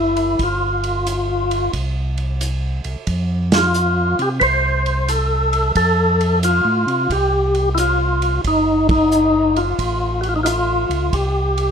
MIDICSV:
0, 0, Header, 1, 4, 480
1, 0, Start_track
1, 0, Tempo, 670391
1, 283, Time_signature, 4, 2, 24, 8
1, 8386, End_track
2, 0, Start_track
2, 0, Title_t, "Tonewheel organ"
2, 0, Program_c, 0, 16
2, 0, Note_on_c, 0, 64, 71
2, 309, Note_off_c, 0, 64, 0
2, 311, Note_on_c, 0, 65, 68
2, 1228, Note_off_c, 0, 65, 0
2, 2533, Note_on_c, 0, 65, 91
2, 3020, Note_on_c, 0, 67, 74
2, 3022, Note_off_c, 0, 65, 0
2, 3074, Note_off_c, 0, 67, 0
2, 3149, Note_on_c, 0, 71, 65
2, 3169, Note_on_c, 0, 72, 81
2, 3173, Note_off_c, 0, 71, 0
2, 3646, Note_on_c, 0, 69, 75
2, 3661, Note_off_c, 0, 72, 0
2, 4096, Note_off_c, 0, 69, 0
2, 4128, Note_on_c, 0, 69, 87
2, 4578, Note_off_c, 0, 69, 0
2, 4615, Note_on_c, 0, 65, 78
2, 5098, Note_on_c, 0, 67, 83
2, 5104, Note_off_c, 0, 65, 0
2, 5509, Note_off_c, 0, 67, 0
2, 5546, Note_on_c, 0, 64, 55
2, 5572, Note_off_c, 0, 64, 0
2, 5581, Note_on_c, 0, 65, 74
2, 6025, Note_off_c, 0, 65, 0
2, 6067, Note_on_c, 0, 63, 74
2, 6354, Note_off_c, 0, 63, 0
2, 6379, Note_on_c, 0, 63, 87
2, 6851, Note_on_c, 0, 65, 77
2, 6866, Note_off_c, 0, 63, 0
2, 7311, Note_on_c, 0, 66, 63
2, 7312, Note_off_c, 0, 65, 0
2, 7361, Note_off_c, 0, 66, 0
2, 7367, Note_on_c, 0, 65, 67
2, 7404, Note_off_c, 0, 65, 0
2, 7416, Note_on_c, 0, 63, 62
2, 7451, Note_off_c, 0, 63, 0
2, 7470, Note_on_c, 0, 65, 65
2, 7479, Note_on_c, 0, 63, 56
2, 7489, Note_off_c, 0, 65, 0
2, 7497, Note_on_c, 0, 65, 70
2, 7499, Note_off_c, 0, 63, 0
2, 7974, Note_on_c, 0, 67, 72
2, 7986, Note_off_c, 0, 65, 0
2, 8386, Note_off_c, 0, 67, 0
2, 8386, End_track
3, 0, Start_track
3, 0, Title_t, "Tonewheel organ"
3, 0, Program_c, 1, 16
3, 0, Note_on_c, 1, 30, 65
3, 253, Note_off_c, 1, 30, 0
3, 279, Note_on_c, 1, 31, 72
3, 1212, Note_off_c, 1, 31, 0
3, 1239, Note_on_c, 1, 36, 75
3, 2011, Note_off_c, 1, 36, 0
3, 2040, Note_on_c, 1, 36, 34
3, 2121, Note_off_c, 1, 36, 0
3, 2198, Note_on_c, 1, 41, 69
3, 2971, Note_off_c, 1, 41, 0
3, 2998, Note_on_c, 1, 48, 61
3, 3150, Note_off_c, 1, 48, 0
3, 3159, Note_on_c, 1, 36, 82
3, 4093, Note_off_c, 1, 36, 0
3, 4119, Note_on_c, 1, 41, 80
3, 4733, Note_off_c, 1, 41, 0
3, 4757, Note_on_c, 1, 45, 55
3, 4909, Note_off_c, 1, 45, 0
3, 4919, Note_on_c, 1, 48, 64
3, 5070, Note_off_c, 1, 48, 0
3, 5081, Note_on_c, 1, 36, 79
3, 6015, Note_off_c, 1, 36, 0
3, 6045, Note_on_c, 1, 30, 78
3, 6977, Note_off_c, 1, 30, 0
3, 7008, Note_on_c, 1, 33, 79
3, 7777, Note_off_c, 1, 33, 0
3, 7799, Note_on_c, 1, 37, 63
3, 7952, Note_off_c, 1, 37, 0
3, 7966, Note_on_c, 1, 36, 76
3, 8386, Note_off_c, 1, 36, 0
3, 8386, End_track
4, 0, Start_track
4, 0, Title_t, "Drums"
4, 118, Note_on_c, 9, 51, 42
4, 190, Note_off_c, 9, 51, 0
4, 281, Note_on_c, 9, 36, 30
4, 281, Note_on_c, 9, 51, 48
4, 352, Note_off_c, 9, 51, 0
4, 353, Note_off_c, 9, 36, 0
4, 598, Note_on_c, 9, 51, 40
4, 670, Note_off_c, 9, 51, 0
4, 763, Note_on_c, 9, 44, 49
4, 763, Note_on_c, 9, 51, 50
4, 834, Note_off_c, 9, 44, 0
4, 834, Note_off_c, 9, 51, 0
4, 1082, Note_on_c, 9, 51, 42
4, 1153, Note_off_c, 9, 51, 0
4, 1241, Note_on_c, 9, 51, 47
4, 1242, Note_on_c, 9, 36, 27
4, 1313, Note_off_c, 9, 51, 0
4, 1314, Note_off_c, 9, 36, 0
4, 1558, Note_on_c, 9, 51, 37
4, 1629, Note_off_c, 9, 51, 0
4, 1724, Note_on_c, 9, 44, 52
4, 1724, Note_on_c, 9, 51, 53
4, 1796, Note_off_c, 9, 44, 0
4, 1796, Note_off_c, 9, 51, 0
4, 2036, Note_on_c, 9, 51, 40
4, 2107, Note_off_c, 9, 51, 0
4, 2197, Note_on_c, 9, 51, 50
4, 2200, Note_on_c, 9, 36, 29
4, 2269, Note_off_c, 9, 51, 0
4, 2271, Note_off_c, 9, 36, 0
4, 2519, Note_on_c, 9, 51, 62
4, 2521, Note_on_c, 9, 38, 73
4, 2591, Note_off_c, 9, 51, 0
4, 2593, Note_off_c, 9, 38, 0
4, 2678, Note_on_c, 9, 44, 49
4, 2750, Note_off_c, 9, 44, 0
4, 2999, Note_on_c, 9, 51, 37
4, 3071, Note_off_c, 9, 51, 0
4, 3158, Note_on_c, 9, 51, 52
4, 3160, Note_on_c, 9, 36, 29
4, 3230, Note_off_c, 9, 51, 0
4, 3232, Note_off_c, 9, 36, 0
4, 3479, Note_on_c, 9, 51, 37
4, 3551, Note_off_c, 9, 51, 0
4, 3640, Note_on_c, 9, 44, 47
4, 3640, Note_on_c, 9, 51, 56
4, 3712, Note_off_c, 9, 44, 0
4, 3712, Note_off_c, 9, 51, 0
4, 3958, Note_on_c, 9, 51, 43
4, 4030, Note_off_c, 9, 51, 0
4, 4120, Note_on_c, 9, 51, 55
4, 4122, Note_on_c, 9, 36, 30
4, 4192, Note_off_c, 9, 51, 0
4, 4193, Note_off_c, 9, 36, 0
4, 4443, Note_on_c, 9, 51, 41
4, 4515, Note_off_c, 9, 51, 0
4, 4603, Note_on_c, 9, 44, 52
4, 4603, Note_on_c, 9, 51, 57
4, 4675, Note_off_c, 9, 44, 0
4, 4675, Note_off_c, 9, 51, 0
4, 4927, Note_on_c, 9, 51, 38
4, 4998, Note_off_c, 9, 51, 0
4, 5085, Note_on_c, 9, 36, 29
4, 5087, Note_on_c, 9, 51, 50
4, 5156, Note_off_c, 9, 36, 0
4, 5159, Note_off_c, 9, 51, 0
4, 5403, Note_on_c, 9, 51, 36
4, 5474, Note_off_c, 9, 51, 0
4, 5567, Note_on_c, 9, 44, 60
4, 5567, Note_on_c, 9, 51, 55
4, 5639, Note_off_c, 9, 44, 0
4, 5639, Note_off_c, 9, 51, 0
4, 5885, Note_on_c, 9, 51, 41
4, 5957, Note_off_c, 9, 51, 0
4, 6046, Note_on_c, 9, 51, 52
4, 6047, Note_on_c, 9, 36, 29
4, 6117, Note_off_c, 9, 51, 0
4, 6118, Note_off_c, 9, 36, 0
4, 6366, Note_on_c, 9, 36, 74
4, 6366, Note_on_c, 9, 51, 66
4, 6437, Note_off_c, 9, 36, 0
4, 6438, Note_off_c, 9, 51, 0
4, 6527, Note_on_c, 9, 44, 58
4, 6598, Note_off_c, 9, 44, 0
4, 6848, Note_on_c, 9, 51, 39
4, 6919, Note_off_c, 9, 51, 0
4, 7008, Note_on_c, 9, 36, 27
4, 7008, Note_on_c, 9, 51, 51
4, 7079, Note_off_c, 9, 36, 0
4, 7080, Note_off_c, 9, 51, 0
4, 7327, Note_on_c, 9, 51, 37
4, 7399, Note_off_c, 9, 51, 0
4, 7488, Note_on_c, 9, 44, 57
4, 7488, Note_on_c, 9, 51, 59
4, 7559, Note_off_c, 9, 44, 0
4, 7559, Note_off_c, 9, 51, 0
4, 7809, Note_on_c, 9, 51, 42
4, 7881, Note_off_c, 9, 51, 0
4, 7968, Note_on_c, 9, 36, 31
4, 7968, Note_on_c, 9, 51, 48
4, 8040, Note_off_c, 9, 36, 0
4, 8040, Note_off_c, 9, 51, 0
4, 8288, Note_on_c, 9, 51, 40
4, 8360, Note_off_c, 9, 51, 0
4, 8386, End_track
0, 0, End_of_file